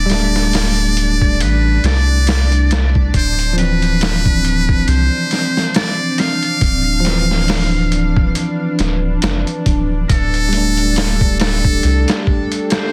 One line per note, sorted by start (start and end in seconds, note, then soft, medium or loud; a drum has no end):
0.00 1.42 D1 loud
0.00 12.92 D4 medium
0.00 1.43 D5 loud
0.06 3.10 G3 medium
0.06 closed hi-hat medium
0.10 3.12 A3 medium
0.10 3.14 D4 loud
0.10 snare medium
0.36 snare soft
0.53 snare loud
0.53 open hi-hat medium
0.97 closed hi-hat medium
1.22 kick medium
1.40 1.79 A1 medium
1.40 1.87 B4 medium
1.40 closed hi-hat medium
1.84 3.10 C2 medium
1.84 2.90 D5 loud
1.84 snare medium
1.84 closed hi-hat medium
2.27 snare loud
2.27 closed hi-hat medium
2.52 closed hi-hat soft
2.71 snare loud
2.71 closed hi-hat medium
2.95 kick medium
3.14 4.85 D1 medium
3.14 6.58 C4 medium
3.14 12.92 D4 medium
3.14 3.55 C5 loud
3.14 kick loud
3.14 closed hi-hat medium
3.39 closed hi-hat soft
3.53 6.99 F3 medium
3.53 7.01 C4 medium
3.58 7.03 E3 medium
3.58 4.90 B4 loud
3.58 closed hi-hat medium
3.82 closed hi-hat soft
4.01 snare loud
4.01 closed hi-hat medium
4.26 kick loud
4.45 closed hi-hat medium
4.69 kick loud
4.88 5.10 C2 loud
4.88 5.75 C5 loud
4.88 closed hi-hat medium
5.31 snare soft
5.31 closed hi-hat medium
5.57 snare soft
5.74 6.21 D5 loud
5.74 snare loud
5.74 closed hi-hat loud
6.18 8.80 F5 loud
6.18 snare soft
6.18 closed hi-hat medium
6.43 closed hi-hat soft
6.61 8.32 D1 loud
6.61 10.06 B4 medium
6.61 kick loud
6.61 closed hi-hat medium
7.00 10.05 F3 medium
7.04 10.09 E3 loud
7.04 10.07 C4 medium
7.04 snare medium
7.04 closed hi-hat medium
7.31 snare soft
7.48 snare loud
7.48 open hi-hat medium
7.92 closed hi-hat medium
8.17 kick medium
8.35 closed hi-hat loud
8.79 9.18 D1 medium
8.79 snare medium
8.79 closed hi-hat medium
9.22 9.44 F1 medium
9.22 snare loud
9.22 closed hi-hat medium
9.47 closed hi-hat soft
9.66 10.05 D1 loud
9.66 kick loud
9.66 closed hi-hat medium
10.09 11.80 D1 loud
10.09 12.92 G4 medium
10.09 12.92 A4 medium
10.09 11.36 A4 loud
10.09 kick loud
10.09 closed hi-hat medium
10.34 closed hi-hat soft
10.49 12.92 G3 medium
10.49 closed hi-hat medium
10.53 12.92 A3 medium
10.57 12.92 D4 medium
10.77 closed hi-hat soft
10.96 snare loud
10.96 closed hi-hat medium
11.21 kick loud
11.40 12.23 A4 loud
11.40 snare loud
11.40 closed hi-hat medium
11.65 kick medium
11.83 12.06 C2 loud
11.83 closed hi-hat medium
12.08 snare medium
12.08 closed hi-hat medium
12.27 kick medium
12.52 closed hi-hat medium
12.70 12.92 C5 loud
12.70 snare loud
12.70 closed hi-hat medium